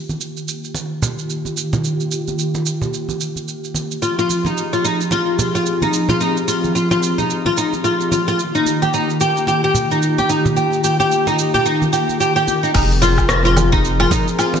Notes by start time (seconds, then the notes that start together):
Already playing: D#3 A#3 F4 G4
0.09 high conga, shaker
0.21 shaker
0.37 shaker
0.48 shaker
0.64 shaker
0.74 muted conga, shaker
1.02 low conga, shaker
1.19 shaker
1.30 shaker
1.45 high conga, shaker
1.57 shaker
1.73 muted conga, low conga, shaker
1.84 shaker
2.00 shaker
2.11 shaker
2.28 high conga, shaker
2.39 shaker
2.55 muted conga, shaker
2.66 shaker
2.82 low conga, shaker
2.94 shaker
3.09 high conga, shaker
3.21 shaker
3.36 high conga, shaker
3.48 shaker
3.64 shaker
3.74 high conga, shaker
3.91 shaker
4.02 F3 C4 F4 G#4, shaker
4.19 F4, shaker
4.30 high conga, shaker
4.45 D#4, high conga, shaker
4.57 shaker
4.73 F4, shaker
4.84 D#4, shaker
5.01 shaker
5.11 F4, muted conga, shaker
5.39 F4, low conga, shaker
5.55 F4, shaker
5.66 shaker
5.82 D#4, high conga, shaker
5.93 shaker
6.09 F4, muted conga, low conga, shaker
6.21 D#4, shaker
6.37 shaker
6.48 F4, shaker
6.64 high conga, shaker
6.75 F4, shaker
6.91 F4, muted conga, shaker
7.03 shaker
7.18 D#4, low conga, shaker
7.30 shaker
7.45 F4, high conga
7.57 D#4, shaker
7.73 high conga, shaker
7.84 F4, shaker
8.01 shaker
8.12 F4, high conga, shaker
8.28 F4, shaker
8.38 D#3 A#3 F4 G4, shaker
8.55 D#4, shaker
8.66 high conga, shaker
8.82 G4, high conga, shaker
8.94 D#4, shaker
9.10 shaker
9.21 G4, shaker
9.37 shaker
9.47 G4, muted conga, shaker
9.64 G4
9.75 low conga, shaker
9.91 D#4, shaker
10.02 shaker
10.18 G4, high conga, shaker
10.29 D#4, shaker
10.45 muted conga, low conga, shaker
10.56 G4, shaker
10.73 shaker
10.84 G4, shaker
11.00 G4, high conga, shaker
11.12 shaker
11.27 D#4, muted conga, shaker
11.39 shaker
11.54 G4, low conga, shaker
11.66 D#4, shaker
11.82 high conga, shaker
11.93 G4, shaker
12.09 high conga, shaker
12.20 G4, shaker
12.36 G4, shaker
12.48 muted conga, high conga, shaker
12.63 D#4, shaker
12.74 F1 F3 C4 D#4 G#4 A#4, kick, crash, low woodblock, shaker
12.91 shaker
13.02 F4, muted conga, shaker
13.18 kick, low woodblock, shaker
13.29 F4, cross-stick, shaker
13.45 F4, shaker
13.56 muted conga, high conga, low woodblock, shaker
13.72 D#4, kick, high conga, shaker
13.85 shaker
14.00 F4, low woodblock
14.11 D#4, kick, low conga, shaker
14.28 shaker
14.39 F4, low woodblock, shaker
14.54 muted conga, shaker